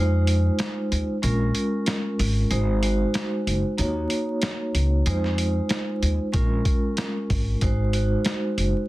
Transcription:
Already playing: upright bass F2, vibraphone G#3 D#4 F4 C5
0.27 closed hi-hat
0.59 snare, closed hi-hat
0.92 upright bass D#2, closed hi-hat
1.22 upright bass A#1, vibraphone G#3 C#4 F4 A#4, closed hi-hat
1.55 closed hi-hat
1.86 snare, closed hi-hat
2.19 upright bass G#1, open hi-hat
2.51 upright bass G#1, vibraphone G#3 D#4 F#4 C5, closed hi-hat
2.83 vibraphone G#3 D#4 F#4 C5, closed hi-hat
3.14 snare, closed hi-hat
3.47 upright bass F#1, closed hi-hat
3.78 upright bass D#2, vibraphone A#3 D#4 F#4 C#5, closed hi-hat
4.10 closed hi-hat
4.42 snare, closed hi-hat
4.75 upright bass C#2, closed hi-hat
5.06 upright bass F2, vibraphone G#3 D#4 F4 C5, closed hi-hat
5.24 snare
5.38 closed hi-hat
5.69 snare, closed hi-hat
6.02 upright bass D#2, closed hi-hat
6.33 upright bass A#1, vibraphone G#3 C#4 F4 A#4, kick, closed hi-hat
6.65 kick, closed hi-hat
6.97 snare, closed hi-hat
7.30 upright bass G#1, kick, open hi-hat
7.61 upright bass G#1, vibraphone G#3 D#4 F#4 C5, kick, closed hi-hat
7.93 vibraphone G#3 D#4 F#4 C5, closed hi-hat
8.25 snare, closed hi-hat
8.57 upright bass F#1, closed hi-hat

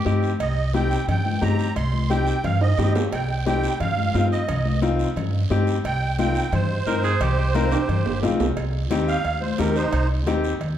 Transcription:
0.05 upright bass G2, upright piano C4 D#4 G4, tenor saxophone G4, high conga, short guiro
0.23 short guiro
0.40 upright bass C2, accordion D#5, cowbell, long guiro
0.74 upright piano C4 D#4 G4, accordion G5, high conga, short guiro
0.91 short guiro
1.08 upright bass G2, accordion G5, cowbell, high conga, low conga, long guiro
1.25 high conga
1.41 upright bass G2, upright piano C4 D#4 G4, accordion A#5, high conga, low timbale, short guiro
1.59 short guiro
1.76 upright bass C2, accordion C6, cowbell, high conga, long guiro
1.94 high conga
2.10 upright piano C4 D#4 G4, accordion G5, high conga, short guiro
2.27 short guiro
2.44 upright bass G2, accordion F5, cowbell, high conga, low conga, long guiro
2.61 accordion D#5, high timbale
2.78 upright bass G2, upright piano C4 D#4 G4, high conga, low conga, low timbale, short guiro
2.95 low timbale, short guiro
3.12 upright bass C2, accordion G5, cowbell, high conga, long guiro
3.46 upright piano C4 D#4 G4, accordion G5, high conga, short guiro
3.64 short guiro
3.80 upright bass G2, accordion F5, cowbell, high conga, low conga, long guiro
3.97 high conga
4.14 upright bass G2, upright piano C4 D#4 F4, high conga, low timbale, short guiro
4.32 accordion D#5, short guiro
4.48 upright bass C2, cowbell, high conga, low conga, long guiro
4.65 high conga
4.82 upright piano C4 D#4 F4, high conga, short guiro
4.99 short guiro
5.16 upright bass G2, cowbell, high conga, low conga, long guiro
5.50 upright bass G2, upright piano C4 D#4 G4, high conga, short guiro
5.67 short guiro
5.84 upright bass C2, accordion G5, cowbell, high conga, long guiro
6.18 upright piano C4 D#4 F4, accordion G5, high conga, short guiro
6.35 short guiro
6.52 upright bass G2, accordion C5, cowbell, high conga, low conga, long guiro
6.86 upright bass G2, upright piano C4 D#4 A#4, tenor saxophone A#4, high conga, short guiro
7.04 tenor saxophone G#4, short guiro
7.20 upright bass C2, tenor saxophone G4, cowbell, high conga, low conga, long guiro
7.38 tenor saxophone G4
7.54 upright piano C4 D#4 A#4, tenor saxophone F4, high conga, short guiro
7.71 tenor saxophone G4, high timbale, short guiro
7.89 upright bass G2, cowbell, high conga, low conga, long guiro
8.06 upright bass G1, low timbale
8.22 upright bass A#1, upright piano C4 D#4 F4, high conga, low timbale, short guiro
8.40 upright bass C2, low timbale, short guiro
8.57 upright bass C2, cowbell, high conga, long guiro
8.90 upright bass D#2, upright piano C4 D#4 G4, cowbell, high conga, short guiro
9.08 accordion F5, short guiro
9.24 upright bass D#2, cowbell, high conga, long guiro
9.41 accordion C5, high conga
9.58 upright bass D#2, upright piano C4 D#4 G4, accordion A#4, cowbell, high conga, low timbale, short guiro
9.75 accordion D#4 C5, short guiro
9.93 upright bass C2, cowbell, high conga, long guiro
10.27 upright bass D#2, upright piano C4 D#4 G4, cowbell, high conga, short guiro
10.44 short guiro
10.61 upright bass D#2, cowbell, high conga, long guiro

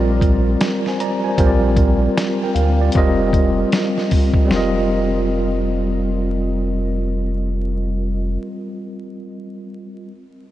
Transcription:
Already playing: sub bass A#1, tine electric piano G3 C4 F4 A#4 D5
0.21 kick, closed hi-hat
0.61 snare, closed hi-hat
0.86 tine electric piano C5 G#5, snare
1.00 tine electric piano D5 A#5, closed hi-hat
1.24 tine electric piano C5 G#5
1.38 sub bass A#1, tine electric piano G3 C4 F4 A#4 C5, kick, closed hi-hat
1.47 tine electric piano D5
1.76 kick, closed hi-hat
2.17 snare, closed hi-hat
2.43 tine electric piano A#4 G5
2.55 sub bass D2, tine electric piano F5, closed hi-hat
2.81 tine electric piano F4 D5
2.92 sub bass F1, tine electric piano G3 C4 F4, kick, closed hi-hat
2.97 tine electric piano A#4 D#5
3.33 kick, closed hi-hat
3.72 snare, closed hi-hat
3.98 snare
4.11 kick, open hi-hat
4.34 kick
4.45 tine electric piano G3 C4
4.50 sub bass F1, tine electric piano F4 A#4, snare
4.56 tine electric piano D#5

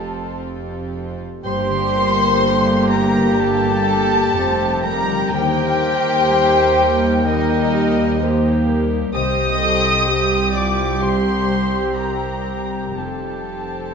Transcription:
Already playing: double bass section F1, cello section F2, harp F3 C4 F4 G4 C5, french horn section C4 G4, viola section C4 F4, clarinet A4, violin section A4 C5 A5, flute section A5
0.18 harp C5
0.43 harp G4
0.69 harp C5
0.95 harp G4
1.21 harp C4
1.44 double bass section G1, cello section G2, harp G2, viola section A#3 G4, clarinet G4, violin section C5 C6, french horn section C5, oboe G5, flute section C6
1.70 harp D3
1.95 harp G4, french horn section A#4
2.20 harp A#3
2.44 harp G4, viola section G4, french horn section A4
2.92 harp G3, french horn section A#3, violin section A#4 A#5, flute section A#5
3.17 harp D3
3.40 harp G2, violin section A4 A5, flute section A5
3.64 harp G3
3.88 harp G4
4.36 double bass section F1, cello section F2, viola section A3, harp G4, french horn section C5
4.61 harp A#4
4.84 harp G3, viola section G3, violin section A#4 A#5, french horn section A#4, flute section A#5
5.08 harp D3
5.32 cello section D#2, double bass section D#2, harp D#3, viola section A#3 A#4, clarinet G4, violin section G4 G5, french horn section C5, oboe G5, flute section G5
5.57 harp D#4
5.81 viola section A#3, harp G4
6.06 harp A#4
6.30 viola section G3
6.53 harp A#4
6.78 harp G3
7.01 harp D#4
7.25 harp D#3, viola section G3 A#4, violin section D#4 D#5, french horn section A#4, flute section D#5
7.49 harp G3
7.73 french horn section G4, harp G4
7.97 harp A#4
8.20 viola section A#3 G4, harp G4, french horn section C5
8.44 harp A#4
8.67 harp G3, french horn section A#4
8.93 harp D#4
9.13 double bass section C2, cello section C2, harp C3, viola section C4 G4, clarinet G4, french horn section C5, violin section D#5 D#6, oboe G5, flute section D#6
9.59 french horn section A4
9.63 harp G4
10.07 french horn section G4, harp G4
10.31 harp C5
10.52 harp G3, french horn section F4, violin section D5 D6, flute section D6
10.78 harp C4
10.99 harp C3, viola section C4 G4, french horn section G4, violin section C5 C6, flute section C6
11.25 harp G3
11.49 harp G4
11.72 harp C5
11.95 french horn section G4, violin section A#4 A#5, flute section A#5
12.45 harp G3, french horn section G4
12.71 harp C4
12.96 double bass section F1, cello section F2, harp F3, viola section C4 G4, clarinet G4, violin section A4 A5, oboe G5, flute section A5
13.00 french horn section A4
13.22 harp F4
13.49 harp G4
13.73 harp C5

